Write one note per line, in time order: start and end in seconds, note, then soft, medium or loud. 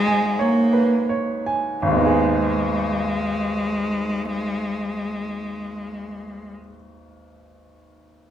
0.00 1.79 G#1 medium
0.00 1.79 G#2 medium
0.00 0.42 G#3 loud
0.00 1.87 G#4 medium
0.00 0.07 G#5 medium
0.00 1.87 A#5 medium
0.07 0.59 G#5 medium
0.39 1.11 A#3 medium
0.39 0.95 C#5 medium
0.73 1.10 B4 medium
1.09 1.69 C#5 medium
1.46 1.83 G#5 medium
1.82 6.51 G#1 medium
1.82 6.52 G#3 medium
1.87 6.56 D#2 medium
1.91 6.60 G#3 medium
1.96 6.65 B3 medium
2.01 6.70 D#4 medium
2.06 6.75 G#4 medium